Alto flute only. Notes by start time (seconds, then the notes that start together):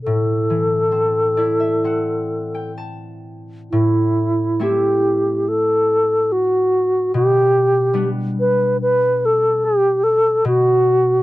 0.03 A4
3.71 E4
4.63 G4
5.48 A4
6.32 F#4
7.16 G4
8.40 B4
8.82 B4
9.25 A4
9.65 G4
10.04 A4
10.47 F#4